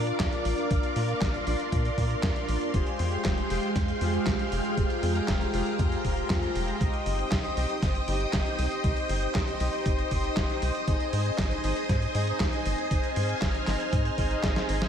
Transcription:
Already playing: analog synth bass A#2, analog polysynth D4 F4 A#4 D5, string machine A#4 D5 F5 D6
0.07 closed hi-hat
0.20 analog synth bass F2, kick, snare, clap, closed hi-hat
0.32 closed hi-hat
0.45 analog synth bass A#1, open hi-hat
0.58 closed hi-hat
0.71 analog synth bass A#1, analog polysynth D4 F4 A#4 D5, string machine C6, kick, closed hi-hat
0.83 closed hi-hat
0.96 analog synth bass A#2, open hi-hat
1.09 closed hi-hat
1.21 analog synth bass A#1, kick, snare, clap, closed hi-hat
1.34 closed hi-hat
1.47 analog synth bass A#1, analog polysynth D4 F4 A#4 D5, open hi-hat
1.60 closed hi-hat
1.72 analog synth bass A#2, kick, closed hi-hat
1.85 closed hi-hat
1.98 analog synth bass A#2, kick, open hi-hat
2.11 closed hi-hat
2.23 analog synth bass F2, kick, snare, clap, closed hi-hat
2.36 closed hi-hat
2.49 analog synth bass A#1, open hi-hat
2.61 closed hi-hat
2.74 analog synth bass F1, string machine G#3 F5 G5, analog polysynth F4 G4 G#4 C5, kick, closed hi-hat
2.87 closed hi-hat
2.99 analog synth bass F2, open hi-hat
3.12 closed hi-hat
3.25 analog synth bass F1, kick, snare, clap, closed hi-hat
3.38 closed hi-hat
3.50 analog synth bass F1, analog polysynth F4 G4 G#4 C5, open hi-hat
3.63 closed hi-hat
3.76 analog synth bass F2, kick, snare, closed hi-hat
3.88 closed hi-hat
4.01 analog synth bass F2, analog polysynth F4 G4 G#4 C5, open hi-hat
4.14 closed hi-hat
4.26 analog synth bass C2, kick, snare, clap, closed hi-hat
4.39 closed hi-hat
4.52 analog synth bass F1, open hi-hat
4.65 closed hi-hat
4.77 analog synth bass F1, analog polysynth F4 G4 G#4 C5, string machine A#5, kick, closed hi-hat
4.90 closed hi-hat
5.03 analog synth bass F2, open hi-hat
5.16 closed hi-hat
5.28 analog synth bass F1, kick, snare, clap, closed hi-hat
5.41 closed hi-hat
5.54 analog synth bass F1, analog polysynth F4 G4 G#4 C5, open hi-hat
5.66 closed hi-hat
5.79 analog synth bass F2, kick, closed hi-hat
5.92 closed hi-hat
6.05 analog synth bass F1, kick, open hi-hat
6.17 closed hi-hat
6.30 analog synth bass F2, kick, snare, clap, closed hi-hat
6.43 closed hi-hat
6.55 analog synth bass F1, open hi-hat
6.68 closed hi-hat
6.80 analog synth bass C2, analog polysynth D#4 G4 C5 D#5, string machine C5 D#5 D#6, kick, closed hi-hat
6.94 closed hi-hat
7.06 analog synth bass G1, open hi-hat
7.19 closed hi-hat
7.32 analog synth bass C2, kick, snare, clap, closed hi-hat
7.44 closed hi-hat
7.57 analog synth bass C2, analog polysynth D#4 G4 C5 D#5, open hi-hat
7.70 closed hi-hat
7.82 analog synth bass G1, kick, snare, closed hi-hat
7.95 closed hi-hat
8.08 analog synth bass G1, analog polysynth D#4 G4 C5 D#5, open hi-hat
8.21 closed hi-hat
8.33 analog synth bass G1, kick, snare, clap, closed hi-hat
8.46 closed hi-hat
8.59 analog synth bass C2, open hi-hat
8.72 closed hi-hat
8.84 analog synth bass C2, analog polysynth D#4 G4 C5 D#5, kick, closed hi-hat
8.97 closed hi-hat
9.09 analog synth bass G1, open hi-hat
9.22 closed hi-hat
9.35 analog synth bass C2, kick, snare, clap, closed hi-hat
9.48 closed hi-hat
9.60 analog synth bass C2, analog polysynth D#4 G4 C5 D#5, open hi-hat
9.73 closed hi-hat
9.86 analog synth bass G1, kick, closed hi-hat
9.99 closed hi-hat
10.11 analog synth bass G1, kick, open hi-hat
10.24 closed hi-hat
10.37 analog synth bass G1, kick, snare, clap, closed hi-hat
10.50 closed hi-hat
10.62 analog synth bass C2, open hi-hat
10.75 closed hi-hat
10.88 analog synth bass G#1, analog polysynth D#4 G#4 C5 D#5, string machine G#5 D#6, kick, closed hi-hat
11.00 closed hi-hat
11.13 analog synth bass G#2, open hi-hat
11.26 closed hi-hat
11.38 analog synth bass G#1, kick, snare, clap, closed hi-hat
11.51 closed hi-hat
11.64 analog synth bass G#1, analog polysynth D#4 G#4 C5 D#5, open hi-hat
11.77 closed hi-hat
11.89 analog synth bass G#2, kick, snare, closed hi-hat
12.02 closed hi-hat
12.15 analog synth bass G#2, analog polysynth D#4 G#4 C5 D#5, open hi-hat
12.27 closed hi-hat
12.40 analog synth bass D#2, kick, snare, clap, closed hi-hat
12.53 closed hi-hat
12.66 analog synth bass G#1, open hi-hat
12.78 closed hi-hat
12.91 analog synth bass G#1, analog polysynth D#4 G#4 C5 D#5, string machine F6, kick, closed hi-hat
13.04 closed hi-hat
13.16 analog synth bass G#2, open hi-hat
13.29 closed hi-hat
13.42 analog synth bass G#1, kick, snare, clap, closed hi-hat
13.55 closed hi-hat
13.67 analog synth bass G#1, analog polysynth D#4 G#4 C5 D#5, snare, clap, open hi-hat
13.80 closed hi-hat
13.93 analog synth bass G#2, kick, closed hi-hat
14.05 closed hi-hat
14.18 analog synth bass G#1, analog polysynth D#4 G#4 C5 D#5, kick, open hi-hat
14.31 closed hi-hat
14.43 analog synth bass G#1, kick, snare, clap, closed hi-hat
14.56 snare, closed hi-hat
14.69 analog synth bass G#1, analog polysynth D#4 G#4 C5 D#5, open hi-hat
14.82 snare, closed hi-hat

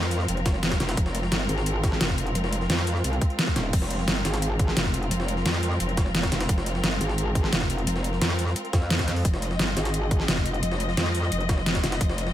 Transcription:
Already playing: wobble bass F2, string section G#3 C4 F4 A#4
0.03 snare
0.11 closed hi-hat, open hi-hat
0.20 snare
0.28 wobble bass F1, closed hi-hat
0.37 closed hi-hat
0.46 kick, snare, closed hi-hat
0.54 snare
0.63 snare, closed hi-hat
0.71 kick, snare, closed hi-hat
0.80 wobble bass F1, snare, closed hi-hat
0.89 snare, closed hi-hat
0.97 wobble bass F1, kick, closed hi-hat
1.06 snare
1.15 snare, closed hi-hat
1.23 snare
1.32 wobble bass G1, snare, closed hi-hat
1.49 wobble bass G#1, closed hi-hat
1.58 snare
1.66 closed hi-hat
1.83 kick, snare, closed hi-hat
1.92 snare
2.01 wobble bass F1, snare, closed hi-hat
2.09 kick, snare
2.18 closed hi-hat
2.27 closed hi-hat
2.35 wobble bass F1, closed hi-hat
2.44 snare
2.53 closed hi-hat
2.61 snare
2.70 wobble bass F2, snare, closed hi-hat
2.78 snare
2.87 closed hi-hat, open hi-hat
2.96 snare
3.04 wobble bass C2, closed hi-hat
3.13 closed hi-hat
3.21 kick, closed hi-hat
3.30 closed hi-hat
3.39 snare, closed hi-hat
3.47 kick, snare
3.56 wobble bass D#1, snare, closed hi-hat
3.73 wobble bass F1, string section A#4, kick, closed hi-hat, crash
3.82 snare
3.90 snare, closed hi-hat
3.99 snare
4.08 wobble bass G1, snare, closed hi-hat
4.25 wobble bass G#1, snare, closed hi-hat
4.34 snare, closed hi-hat
4.42 closed hi-hat
4.59 kick, closed hi-hat
4.68 snare
4.77 wobble bass F1, snare, closed hi-hat
4.85 kick, snare
4.94 closed hi-hat
5.03 closed hi-hat
5.11 wobble bass F1, closed hi-hat
5.20 snare
5.28 closed hi-hat
5.37 snare
5.46 wobble bass F2, snare, closed hi-hat
5.54 snare
5.63 closed hi-hat, open hi-hat
5.72 snare
5.80 wobble bass F1, closed hi-hat
5.89 closed hi-hat
5.97 kick, snare, closed hi-hat
6.06 snare
6.15 snare, closed hi-hat
6.23 kick, snare, closed hi-hat
6.32 wobble bass F1, snare, closed hi-hat
6.41 snare, closed hi-hat
6.49 wobble bass F1, kick, closed hi-hat
6.58 snare
6.66 snare, closed hi-hat
6.75 snare
6.84 wobble bass G1, snare, closed hi-hat
7.01 wobble bass G#1, closed hi-hat
7.09 snare
7.18 closed hi-hat
7.35 kick, closed hi-hat
7.44 snare
7.53 wobble bass F1, snare, closed hi-hat
7.61 kick, snare
7.70 closed hi-hat
7.78 closed hi-hat
7.87 wobble bass F1, closed hi-hat
7.96 snare
8.04 closed hi-hat
8.13 snare
8.21 wobble bass F2, snare, closed hi-hat
8.30 snare
8.39 closed hi-hat, open hi-hat
8.47 snare
8.56 closed hi-hat
8.65 closed hi-hat
8.73 wobble bass F2, kick, snare, closed hi-hat
8.82 snare
8.90 snare, closed hi-hat, open hi-hat
8.99 kick, snare, closed hi-hat
9.08 snare, closed hi-hat
9.16 open hi-hat
9.25 wobble bass F1, string section D#5, kick, closed hi-hat
9.34 snare
9.42 snare, closed hi-hat
9.51 snare
9.59 wobble bass G1, snare, closed hi-hat
9.77 wobble bass G#1, snare, closed hi-hat
9.85 snare, closed hi-hat
9.94 closed hi-hat
10.11 kick, closed hi-hat
10.20 snare
10.28 wobble bass F1, snare, closed hi-hat
10.37 kick, snare
10.46 closed hi-hat
10.54 closed hi-hat
10.63 wobble bass F1, closed hi-hat
10.72 snare
10.80 closed hi-hat
10.89 snare
10.97 wobble bass F2, snare, closed hi-hat
11.06 snare
11.15 closed hi-hat, open hi-hat
11.23 snare
11.32 wobble bass F1, closed hi-hat
11.40 closed hi-hat
11.49 kick, snare, closed hi-hat
11.58 snare
11.66 snare, closed hi-hat
11.75 kick, snare, closed hi-hat
11.84 wobble bass F1, snare, closed hi-hat
11.92 snare, closed hi-hat
12.01 wobble bass F1, kick, closed hi-hat
12.10 snare
12.18 snare, closed hi-hat
12.27 snare

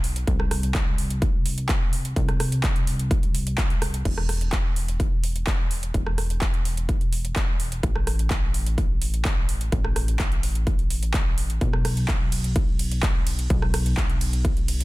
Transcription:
Already playing: analog synth bass B1
0.04 open hi-hat
0.16 closed hi-hat
0.27 analog synth bass C2, kick, closed hi-hat
0.40 cross-stick
0.51 cross-stick, open hi-hat
0.63 closed hi-hat
0.74 kick, clap, closed hi-hat
0.98 open hi-hat
1.10 closed hi-hat
1.22 kick, closed hi-hat
1.46 open hi-hat
1.58 closed hi-hat
1.69 kick, clap, closed hi-hat
1.93 open hi-hat
2.05 closed hi-hat
2.16 analog synth bass C2, kick, closed hi-hat
2.29 cross-stick, closed hi-hat
2.40 cross-stick, open hi-hat
2.52 closed hi-hat
2.63 kick, clap, closed hi-hat
2.76 closed hi-hat
2.87 open hi-hat
2.99 closed hi-hat
3.11 kick, closed hi-hat
3.23 closed hi-hat
3.35 open hi-hat
3.47 closed hi-hat
3.58 kick, clap, closed hi-hat
3.70 closed hi-hat
3.82 cross-stick, open hi-hat
3.94 closed hi-hat
4.05 analog synth bass E1, kick, closed hi-hat, crash
4.18 cross-stick
4.29 cross-stick, open hi-hat
4.41 closed hi-hat
4.52 kick, clap, closed hi-hat
4.76 open hi-hat
4.88 closed hi-hat
5.00 kick, closed hi-hat
5.24 open hi-hat
5.36 closed hi-hat
5.47 kick, clap, closed hi-hat
5.71 open hi-hat
5.83 closed hi-hat
5.94 analog synth bass E1, kick, closed hi-hat
6.07 cross-stick
6.18 cross-stick, open hi-hat
6.30 closed hi-hat
6.41 kick, clap, closed hi-hat
6.54 closed hi-hat
6.65 open hi-hat
6.77 closed hi-hat
6.89 kick, closed hi-hat
7.01 closed hi-hat
7.13 open hi-hat
7.25 closed hi-hat
7.36 kick, clap, closed hi-hat
7.60 open hi-hat
7.72 closed hi-hat
7.83 analog synth bass A1, kick, closed hi-hat
7.96 cross-stick
8.07 cross-stick, open hi-hat
8.19 closed hi-hat
8.30 kick, clap, closed hi-hat
8.54 open hi-hat
8.66 closed hi-hat
8.78 kick, closed hi-hat
9.02 open hi-hat
9.14 closed hi-hat
9.25 kick, clap, closed hi-hat
9.49 open hi-hat
9.61 closed hi-hat
9.72 analog synth bass A1, kick, closed hi-hat
9.85 cross-stick
9.96 cross-stick, open hi-hat
10.08 closed hi-hat
10.19 kick, clap, closed hi-hat
10.32 closed hi-hat
10.43 open hi-hat
10.55 closed hi-hat
10.67 kick, closed hi-hat
10.79 closed hi-hat
10.90 open hi-hat
11.03 closed hi-hat
11.14 kick, clap, closed hi-hat
11.38 open hi-hat
11.50 closed hi-hat
11.61 analog synth bass B1, kick, closed hi-hat
11.73 cross-stick
11.85 cross-stick, open hi-hat, ride
11.97 closed hi-hat
12.08 kick, clap, closed hi-hat
12.32 open hi-hat, ride
12.44 closed hi-hat
12.56 kick, closed hi-hat
12.79 open hi-hat, ride
12.91 closed hi-hat
13.03 kick, clap, closed hi-hat
13.27 open hi-hat, ride
13.39 closed hi-hat
13.50 analog synth bass B1, kick, closed hi-hat
13.62 cross-stick
13.74 cross-stick, open hi-hat, ride
13.86 closed hi-hat
13.97 kick, clap, closed hi-hat
14.10 closed hi-hat
14.21 open hi-hat, ride
14.33 closed hi-hat
14.45 kick, closed hi-hat
14.57 closed hi-hat
14.68 open hi-hat, ride
14.80 closed hi-hat

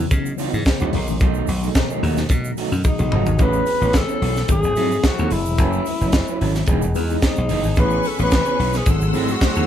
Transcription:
Already playing: tine electric piano C#3 E3 F#3 B3 D#4
0.11 slap bass C#3, muted clean electric guitar stroke, kick, closed hi-hat, shaker
0.25 muted clean electric guitar stroke, shaker
0.38 clean electric guitar E3 B3 D#4 F#4, tine electric piano C#5, open hi-hat, shaker
0.53 slap bass G#2, tine electric piano G#4 B4, muted clean electric guitar stroke, shaker
0.65 kick, snare, closed hi-hat, shaker
0.80 slap bass C#2, clean electric guitar E3 B3 D#4 F#4, tine electric piano E4 G#4, shaker
0.92 slap bass B1, tine electric piano B2 D#3 F#3 A3 D#4, muted clean electric guitar stroke, open hi-hat
1.07 slap bass A1, muted clean electric guitar stroke, shaker
1.20 slap bass B1, clean electric guitar F#3 A3 D#4 G#4, kick, closed hi-hat, shaker
1.34 shaker
1.47 slap bass B1, muted clean electric guitar stroke, open hi-hat, shaker
1.63 clean electric guitar F#3 A3 D#4 G#4, shaker
1.75 tine electric piano B2 D#3 F#3 A3 D#4, muted clean electric guitar stroke, kick, snare, closed hi-hat, shaker
1.90 clean electric guitar F#3 A3 D#4 G#4, shaker
2.03 slap bass D#2, clean electric guitar F#3 A3 D#4 F#4, open hi-hat
2.17 muted clean electric guitar stroke, snare, shaker
2.29 slap bass B2, muted clean electric guitar stroke, kick, closed hi-hat, shaker
2.44 muted clean electric guitar stroke, shaker
2.57 clean electric guitar F#3 A3 D#4 F#4, open hi-hat, shaker
2.72 slap bass F#2, tine electric piano D#4 F#4, muted clean electric guitar stroke, shaker
2.84 alto saxophone D#4, tine electric piano G#4 D#5, muted clean electric guitar stroke, kick, high tom, shaker
2.98 slap bass B1, tine electric piano F#4 A4, muted clean electric guitar stroke, mid tom, shaker
3.11 slap bass F#1, clean electric guitar F#3 A3 D#4 F#4, tine electric piano F#5, mid tom
3.25 slap bass G#1, tine electric piano D#4 F#4, muted clean electric guitar stroke, floor tom, shaker
3.38 slap bass A1, tine electric piano E3 A3 B3 C#4 G#4, clean electric guitar E3 B3 C#4 G#4, kick, closed hi-hat, shaker
3.43 alto saxophone B4
3.53 shaker
3.65 muted clean electric guitar stroke, open hi-hat, shaker
3.80 slap bass A1, clean electric guitar E3 B3 C#4 G#4, shaker
3.93 alto saxophone A4, muted clean electric guitar stroke, kick, snare, closed hi-hat, shaker
4.07 clean electric guitar E3 B3 C#4 G#4, shaker
4.22 slap bass B1, clean electric guitar E3 B3 C#4 G#4, open hi-hat
4.36 muted clean electric guitar stroke, snare, shaker
4.48 slap bass G#1, tine electric piano F#3 A3 C4 E4 G#4, muted clean electric guitar stroke, kick, closed hi-hat, shaker
4.52 alto saxophone G#4
4.63 slap bass G#1, muted clean electric guitar stroke, shaker
4.75 slap bass G#2, tine electric piano F#3 A3 C4 E4 G#4, clean electric guitar F#3 C4 E4 A4, open hi-hat, shaker
4.91 muted clean electric guitar stroke, shaker
5.04 alto saxophone F#4, muted clean electric guitar stroke, kick, snare, closed hi-hat, shaker
5.18 slap bass D#2, clean electric guitar F#3 C4 E4 A4, shaker
5.30 slap bass F#1, alto saxophone E4, muted clean electric guitar stroke, open hi-hat, shaker
5.46 slap bass E1, muted clean electric guitar stroke, shaker
5.58 slap bass F#1, tine electric piano F#3 A3 C#4 E4 A4, clean electric guitar F#3 C#4 E4, kick, closed hi-hat, shaker
5.62 clean electric guitar B4
5.73 shaker
5.86 muted clean electric guitar stroke, open hi-hat, shaker
6.01 slap bass F#1, clean electric guitar F#3 C#4 E4 B4, shaker
6.12 kick, snare, closed hi-hat, shaker
6.28 clean electric guitar F#3 C#4 E4 B4, shaker
6.41 slap bass G#1, clean electric guitar F#3 C#4 E4 A4, open hi-hat
6.55 muted clean electric guitar stroke, snare, shaker
6.66 slap bass E1, tine electric piano E3 G#3 B3 D#4 G#4, clean electric guitar E3 B3 D#4, kick, closed hi-hat, shaker
6.70 clean electric guitar G#4
6.82 slap bass E1, muted clean electric guitar stroke, shaker
6.95 slap bass E2, tine electric piano E3 G#3 B3 D#4 G#4, muted clean electric guitar stroke, open hi-hat, shaker
7.10 clean electric guitar E3 B3 D#4 G#4, shaker
7.22 alto saxophone D#4, muted clean electric guitar stroke, kick, snare, closed hi-hat, shaker
7.36 slap bass B1, muted clean electric guitar stroke, shaker
7.49 slap bass F#1, clean electric guitar E3 B3 D#4 G#4, open hi-hat, shaker
7.64 slap bass G#1, muted clean electric guitar stroke, shaker
7.76 slap bass A1, clean electric guitar E3 B3 C#4 G#4, tine electric piano E3 A3 B3 C#4 G#4, string section B4 G#5 C#6, kick, closed hi-hat, shaker
7.80 alto saxophone B4
7.90 shaker
8.03 muted clean electric guitar stroke, open hi-hat, shaker
8.07 alto saxophone A4
8.18 slap bass A1, clean electric guitar E3 B3 C#4 G#4, shaker
8.23 alto saxophone B4
8.31 alto saxophone B4, muted clean electric guitar stroke, kick, snare, closed hi-hat, shaker
8.46 clean electric guitar E3 B3 C#4 G#4, shaker
8.59 slap bass B1, clean electric guitar E3 B3 C#4 G#4, open hi-hat
8.73 muted clean electric guitar stroke, snare, shaker
8.77 alto saxophone G#4
8.86 slap bass G#1, tine electric piano F#3 A3 C4 E4 G#4, string section A3 F#5 C6 E6, muted clean electric guitar stroke, kick, closed hi-hat, shaker
8.90 alto saxophone A4
9.01 slap bass G#1, muted clean electric guitar stroke, shaker
9.13 slap bass G#2, clean electric guitar F#3 C4 E4 A4, tine electric piano F#3 A3 C4 E4 G#4, open hi-hat, shaker
9.28 alto saxophone F#4, muted clean electric guitar stroke, shaker
9.41 kick, snare, closed hi-hat, shaker
9.55 slap bass D#2, clean electric guitar F#3 C4 E4 A4, shaker

